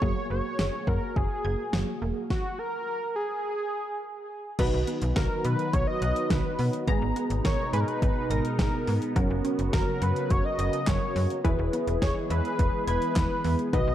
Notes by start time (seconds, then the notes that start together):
Already playing: C#5
0.02 F#1 F#3 A#3 F#4 G#4, kick
0.30 F#1 A#3 C#5
0.59 F#1 G#4, snare
0.87 F#2 A#4 F#5, kick
1.16 F#1 G#4, kick
1.45 F#1 G#6
1.73 F#1 F#3, snare
2.02 E1 A#3
2.30 F#4, kick, snare
2.59 A#4
3.16 G#4
4.59 B1 D#3 F#3 B3 D#4 F#4 B4, kick, closed hi-hat, crash
4.73 B1
4.87 B3, closed hi-hat
5.02 B1, closed hi-hat
5.16 B1 F#4 A#4, kick, snare, closed hi-hat
5.45 B2 B4 D#5, closed hi-hat
5.59 closed hi-hat
5.73 B1 C#5, kick, closed hi-hat
5.87 D#5
6.02 B1 F#6, closed hi-hat
6.16 closed hi-hat
6.30 B1 D#3 B4, kick, snare, closed hi-hat
6.59 B2 B3, open hi-hat
6.73 closed hi-hat
6.87 G#1 B2 G#3 B3 D#4 G#4 A#5, kick, closed hi-hat
7.02 G#1
7.16 B3, closed hi-hat
7.30 G#1, closed hi-hat
7.45 G#1 A#4 C#5, kick, snare, closed hi-hat
7.73 G#2 B4 G#5, closed hi-hat
7.80 A#4
7.88 B4, closed hi-hat
8.02 G#1, kick, closed hi-hat
8.30 G#1 A#4 A#6, closed hi-hat
8.45 closed hi-hat
8.59 G#1 G#3 A#4, kick, snare, closed hi-hat
8.87 G#2 B3, open hi-hat
9.02 closed hi-hat
9.16 F#1 C#3 F#3 C#4 F#4 A#4, kick, closed hi-hat
9.30 F#1
9.45 C#4, closed hi-hat
9.59 F#1, closed hi-hat
9.73 F#1 A#4, kick, snare, closed hi-hat
10.02 F#2 B4 F#5, closed hi-hat
10.16 closed hi-hat
10.30 F#1 C#5, kick, closed hi-hat
10.45 D#5
10.59 F#1 A#6, closed hi-hat
10.73 closed hi-hat
10.87 F#1 F#3 C#5, kick, snare, clap, closed hi-hat
11.16 F#2 C#4, open hi-hat
11.30 closed hi-hat
11.44 E1 E3 G#3 B3 E4 G#4 B4, kick, closed hi-hat
11.59 E1
11.73 B3, closed hi-hat
11.87 E1, closed hi-hat
12.02 E1 G#4 C#5, kick, snare, closed hi-hat
12.30 E2 B4 E5, closed hi-hat
12.45 closed hi-hat
12.59 E1, kick, closed hi-hat
12.87 E1 B4 G#6, closed hi-hat
13.02 closed hi-hat
13.16 E1 E3 B4, kick, snare, clap, closed hi-hat
13.44 E2 B3, open hi-hat
13.59 closed hi-hat
13.73 B1 D#3 F#3 D#4 F#4 B4 D#5, kick, closed hi-hat
13.87 B1